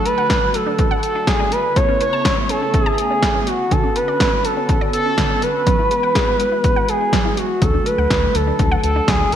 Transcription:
0.00 1.50 D3 medium
0.00 1.50 F#3 medium
0.00 3.43 A3 medium
0.00 1.50 F#4 medium
0.06 0.15 A4 medium
0.06 0.56 B4 loud
0.06 closed hi-hat medium
0.18 0.28 F#5 medium
0.30 0.40 A4 medium
0.30 kick loud
0.30 snare loud
0.30 closed hi-hat medium
0.54 1.03 A4 loud
0.54 closed hi-hat medium
0.67 0.76 D4 medium
0.79 kick loud
0.79 closed hi-hat medium
0.91 1.01 F#5 medium
1.03 1.29 A4 medium
1.03 closed hi-hat medium
1.15 1.25 D4 medium
1.27 1.37 F#3 medium
1.27 1.53 G#4 medium
1.27 kick loud
1.27 snare loud
1.27 closed hi-hat medium
1.40 1.49 D4 medium
1.52 3.45 C#3 medium
1.52 7.58 B3 medium
1.52 3.45 E4 medium
1.52 1.78 B4 loud
1.52 closed hi-hat medium
1.76 1.86 A3 medium
1.76 2.00 C#5 loud
1.76 kick loud
1.76 closed hi-hat medium
1.89 1.98 C#4 medium
2.01 2.10 B4 medium
2.01 2.46 C#5 loud
2.01 closed hi-hat medium
2.13 2.23 A5 medium
2.25 2.35 B4 medium
2.25 kick loud
2.25 snare loud
2.25 closed hi-hat medium
2.49 2.84 A4 loud
2.49 closed hi-hat medium
2.62 2.71 C#4 medium
2.74 kick loud
2.74 closed hi-hat medium
2.84 2.98 G#4 loud
2.84 2.96 A5 medium
2.98 3.49 G#4 loud
2.98 closed hi-hat medium
3.10 3.20 C#4 medium
3.23 3.32 A3 medium
3.23 kick loud
3.23 snare loud
3.23 closed hi-hat medium
3.35 3.45 C#4 medium
3.47 5.64 D3 medium
3.47 5.64 C#4 medium
3.47 9.28 F#4 medium
3.47 3.73 F#4 medium
3.47 closed hi-hat medium
3.71 3.81 D3 medium
3.71 3.97 A4 loud
3.71 kick loud
3.71 closed hi-hat medium
3.84 3.93 C#4 medium
3.96 4.06 B4 medium
3.96 4.46 B4 loud
3.96 closed hi-hat medium
4.08 4.18 D5 medium
4.20 4.30 B4 medium
4.20 kick loud
4.20 snare loud
4.20 closed hi-hat medium
4.45 4.93 A4 loud
4.45 closed hi-hat medium
4.57 4.67 C#4 medium
4.69 kick loud
4.69 closed hi-hat medium
4.81 4.91 D5 loud
4.93 5.44 A4 loud
4.93 closed hi-hat medium
5.06 5.15 C#4 medium
5.18 5.28 D3 medium
5.18 kick loud
5.18 snare loud
5.18 closed hi-hat medium
5.30 5.40 C#4 medium
5.42 6.90 B4 loud
5.42 closed hi-hat medium
5.66 7.60 E3 medium
5.66 5.76 F#3 medium
5.66 7.60 G#3 medium
5.66 kick loud
5.66 closed hi-hat medium
5.79 5.89 E4 medium
5.91 6.01 G#4 medium
5.91 closed hi-hat medium
6.03 6.13 F#5 medium
6.15 6.25 G#4 medium
6.15 kick loud
6.15 snare loud
6.15 closed hi-hat medium
6.40 closed hi-hat medium
6.52 6.62 E4 medium
6.64 kick loud
6.64 closed hi-hat medium
6.76 6.86 F#5 medium
6.89 7.39 G#4 loud
6.89 closed hi-hat medium
7.01 7.10 E4 medium
7.13 7.23 F#3 medium
7.13 kick loud
7.13 snare loud
7.13 closed hi-hat medium
7.25 7.35 E4 medium
7.37 7.63 F#4 medium
7.37 closed hi-hat medium
7.62 7.79 D2 loud
7.62 9.31 D3 medium
7.62 9.31 F#3 medium
7.62 7.71 F#3 medium
7.62 9.31 A3 medium
7.62 7.88 A4 loud
7.62 kick loud
7.62 closed hi-hat medium
7.74 7.84 D4 medium
7.86 7.96 A4 medium
7.86 8.36 B4 loud
7.86 closed hi-hat medium
7.98 8.07 D2 loud
7.98 8.08 F#5 medium
8.10 8.28 D2 loud
8.10 8.20 A4 medium
8.10 kick loud
8.10 snare loud
8.10 closed hi-hat medium
8.35 8.52 D2 medium
8.35 8.83 A4 medium
8.35 closed hi-hat medium
8.47 8.57 D4 medium
8.59 8.76 D2 loud
8.59 kick loud
8.59 closed hi-hat medium
8.71 8.81 F#5 medium
8.83 9.01 D2 medium
8.83 9.10 A4 medium
8.83 closed hi-hat medium
8.96 9.06 D4 medium
9.08 9.25 D2 loud
9.08 9.18 F#3 medium
9.08 9.34 G#4 medium
9.08 kick loud
9.08 snare loud
9.08 closed hi-hat medium
9.20 9.30 D4 medium
9.32 9.36 A1 loud
9.32 9.36 C#3 medium
9.32 9.36 A3 medium
9.32 9.36 B3 medium
9.32 9.36 E4 medium
9.32 9.36 B4 medium
9.32 closed hi-hat medium

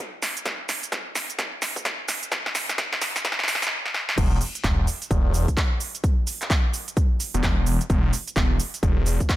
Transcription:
0.22 snare medium
0.22 open hi-hat loud
0.22 cabasa medium
0.37 closed hi-hat medium
0.37 cabasa soft
0.46 kick loud
0.46 snare medium
0.46 closed hi-hat medium
0.46 cabasa soft
0.69 snare medium
0.69 open hi-hat loud
0.69 cabasa medium
0.83 closed hi-hat medium
0.83 cabasa soft
0.92 kick loud
0.92 snare medium
0.92 closed hi-hat medium
0.92 cabasa soft
1.15 snare medium
1.15 open hi-hat loud
1.15 cabasa medium
1.30 closed hi-hat medium
1.30 cabasa soft
1.39 kick loud
1.39 snare medium
1.39 closed hi-hat medium
1.39 cabasa soft
1.62 snare medium
1.62 open hi-hat loud
1.62 cabasa medium
1.76 kick medium
1.76 closed hi-hat medium
1.76 cabasa soft
1.85 kick loud
1.85 snare medium
1.85 closed hi-hat medium
1.85 cabasa soft
2.08 snare medium
2.08 open hi-hat loud
2.08 cabasa medium
2.23 closed hi-hat medium
2.23 cabasa soft
2.32 kick loud
2.32 snare medium
2.32 closed hi-hat medium
2.32 cabasa soft
2.46 snare medium
2.55 snare medium
2.55 open hi-hat loud
2.55 cabasa medium
2.69 snare medium
2.69 closed hi-hat medium
2.69 cabasa soft
2.78 kick loud
2.78 snare loud
2.78 closed hi-hat medium
2.78 cabasa soft
2.93 kick medium
2.93 snare medium
3.02 snare loud
3.02 open hi-hat loud
3.02 cabasa medium
3.16 snare medium
3.16 closed hi-hat medium
3.16 cabasa soft
3.25 kick loud
3.25 snare loud
3.25 closed hi-hat medium
3.25 cabasa soft
3.32 snare medium
3.39 snare medium
3.44 snare medium
3.48 snare loud
3.48 open hi-hat loud
3.48 cabasa medium
3.55 snare medium
3.62 snare medium
3.62 closed hi-hat medium
3.62 cabasa soft
3.67 snare medium
3.86 snare medium
3.94 snare medium
4.09 snare medium
4.18 4.40 E1 loud
4.18 kick loud
4.18 closed hi-hat medium
4.18 crash loud
4.18 cabasa soft
4.41 open hi-hat loud
4.41 cabasa medium
4.55 closed hi-hat medium
4.55 cabasa soft
4.64 4.86 E1 loud
4.64 kick loud
4.64 clap loud
4.64 closed hi-hat medium
4.64 cabasa soft
4.87 open hi-hat loud
4.87 cabasa medium
5.02 closed hi-hat medium
5.02 cabasa soft
5.11 5.46 E1 medium
5.11 kick loud
5.11 closed hi-hat medium
5.11 cabasa soft
5.34 open hi-hat loud
5.34 cabasa medium
5.48 kick medium
5.48 closed hi-hat medium
5.48 cabasa soft
5.57 kick loud
5.57 clap loud
5.57 closed hi-hat medium
5.57 cabasa soft
5.80 open hi-hat loud
5.80 cabasa medium
5.95 closed hi-hat medium
5.95 cabasa soft
6.04 kick loud
6.04 closed hi-hat medium
6.04 cabasa soft
6.27 open hi-hat loud
6.27 cabasa medium
6.42 clap soft
6.42 closed hi-hat medium
6.42 cabasa soft
6.50 kick loud
6.50 clap loud
6.50 closed hi-hat medium
6.50 cabasa soft
6.74 open hi-hat loud
6.74 cabasa medium
6.88 closed hi-hat medium
6.88 cabasa soft
6.97 kick loud
6.97 closed hi-hat medium
6.97 cabasa soft
7.20 open hi-hat loud
7.20 cabasa medium
7.34 7.42 E1 medium
7.34 closed hi-hat medium
7.34 cabasa soft
7.43 7.79 E1 loud
7.43 kick loud
7.43 clap loud
7.43 closed hi-hat medium
7.43 cabasa soft
7.67 open hi-hat loud
7.67 cabasa medium
7.81 closed hi-hat medium
7.81 cabasa soft
7.90 8.12 E1 loud
7.90 kick loud
7.90 closed hi-hat medium
7.90 cabasa soft
8.13 open hi-hat loud
8.13 cabasa medium
8.28 closed hi-hat medium
8.28 cabasa soft
8.36 8.58 E1 loud
8.36 kick loud
8.36 clap loud
8.36 closed hi-hat medium
8.36 cabasa soft
8.60 open hi-hat loud
8.60 cabasa medium
8.74 closed hi-hat medium
8.74 cabasa soft
8.83 9.18 E1 loud
8.83 kick loud
8.83 closed hi-hat medium
8.83 cabasa soft
9.06 open hi-hat loud
9.06 cabasa medium
9.20 kick medium
9.20 closed hi-hat medium
9.20 cabasa soft
9.29 kick loud
9.29 clap loud
9.29 closed hi-hat medium
9.29 cabasa soft

